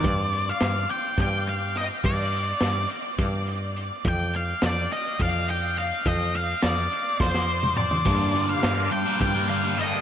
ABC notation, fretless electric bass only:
X:1
M:7/8
L:1/8
Q:1/4=105
K:Gm
V:1 name="Fretless electric bass" clef=bass
G,,2 G,, z G,,3 | G,,2 G,, z G,,3 | F,,2 F,, z F,,3 | F,,2 F,, z F,,3 |
G,,2 G,, z G,,3 |]